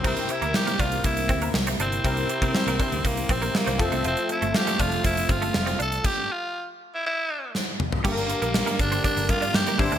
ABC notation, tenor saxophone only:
X:1
M:4/4
L:1/16
Q:1/4=120
K:Cmix
V:1 name="Tenor saxophone"
C2 E2 G2 F2 E4 z2 C2- | C8 B,2 C2 B,2 C2 | C2 E2 G2 F2 E2 F4 A2 | G2 F3 z2 E E4 z4 |
B,6 D2 D2 F2 G2 E2 |]